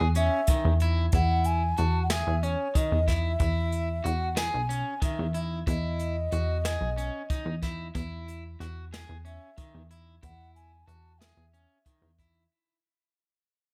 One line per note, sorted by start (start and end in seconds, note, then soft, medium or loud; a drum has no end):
0.01 0.29 E2 medium
0.15 0.40 C#4 medium
0.15 0.77 E5 medium
0.15 closed hi-hat medium
0.47 0.73 D#3 medium
0.47 kick medium
0.47 closed hi-hat medium
0.65 1.09 E2 medium
0.80 1.05 E4 medium
0.80 closed hi-hat medium
1.12 1.74 E2 medium
1.12 1.62 E4 medium
1.12 1.47 F#5 loud
1.12 kick loud
1.12 closed hi-hat medium
1.44 1.80 G#5 loud
1.44 closed hi-hat medium
1.77 2.23 E2 medium
1.77 2.02 F#4 medium
1.77 2.02 A5 medium
1.77 closed hi-hat medium
2.03 2.12 F#5 medium
2.10 2.35 G#4 medium
2.10 2.45 E5 medium
2.10 snare medium
2.10 closed hi-hat medium
2.27 2.56 E2 medium
2.43 2.67 C#4 medium
2.43 2.78 C#5 medium
2.43 closed hi-hat soft
2.75 2.99 D#3 medium
2.75 3.09 D#5 medium
2.75 kick medium
2.75 closed hi-hat medium
2.92 3.36 E2 medium
3.08 3.32 E4 medium
3.08 4.08 E5 medium
3.08 kick medium
3.08 snare soft
3.08 closed hi-hat medium
3.40 4.01 E2 medium
3.40 3.88 E4 medium
3.40 kick medium
3.40 closed hi-hat medium
3.72 closed hi-hat medium
4.04 4.50 E2 medium
4.04 4.28 F#4 medium
4.04 4.40 F#5 medium
4.04 closed hi-hat medium
4.36 4.61 G#4 medium
4.36 5.03 G#5 medium
4.36 snare medium
4.36 closed hi-hat medium
4.54 4.83 B1 medium
4.69 4.94 C#4 medium
4.69 closed hi-hat medium
5.02 5.26 D#3 medium
5.02 5.39 E5 medium
5.02 kick medium
5.02 closed hi-hat medium
5.19 5.64 E2 medium
5.34 5.59 E4 medium
5.34 closed hi-hat medium
5.67 6.29 E2 medium
5.67 6.16 E4 medium
5.67 7.59 D#5 medium
5.67 kick medium
5.67 closed hi-hat medium
5.99 closed hi-hat medium
6.32 6.77 E2 medium
6.32 6.57 F#4 medium
6.32 closed hi-hat medium
6.65 6.89 G#4 medium
6.65 snare medium
6.65 closed hi-hat medium
6.81 7.11 B1 medium
6.97 7.22 C#4 medium
6.97 closed hi-hat medium
7.30 7.54 D#4 medium
7.30 kick loud
7.30 closed hi-hat medium
7.45 7.91 E2 medium
7.62 7.87 E4 medium
7.62 kick medium
7.62 snare soft
7.62 closed hi-hat medium
7.95 8.56 E2 medium
7.95 8.43 E4 medium
7.95 kick medium
7.95 closed hi-hat medium
8.28 closed hi-hat medium
8.60 9.05 E2 medium
8.60 8.84 F#4 medium
8.60 snare soft
8.60 closed hi-hat medium
8.93 9.17 G#4 medium
8.93 snare loud
8.93 closed hi-hat medium
9.09 9.39 E2 medium
9.25 9.49 C#4 medium
9.25 9.87 E5 medium
9.25 closed hi-hat medium
9.58 9.82 D#3 medium
9.58 kick loud
9.58 closed hi-hat medium
9.74 10.19 E2 medium
9.91 10.15 E4 medium
9.91 closed hi-hat medium
10.23 10.84 E2 medium
10.23 10.71 E4 medium
10.23 10.53 F#5 loud
10.23 kick loud
10.23 closed hi-hat medium
10.55 10.88 G#5 medium
10.55 closed hi-hat medium
10.87 11.33 E2 medium
10.87 11.12 F#4 medium
10.87 11.20 A5 medium
10.87 closed hi-hat medium
11.19 11.45 G#4 medium
11.19 12.17 E5 medium
11.19 snare loud
11.19 closed hi-hat medium
11.37 11.66 E2 medium
11.54 11.77 C#4 medium
11.54 closed hi-hat medium
11.86 12.10 D#3 medium
11.86 kick medium
11.86 closed hi-hat medium
12.02 12.47 E2 medium
12.19 12.43 E4 medium
12.19 kick medium
12.19 closed hi-hat medium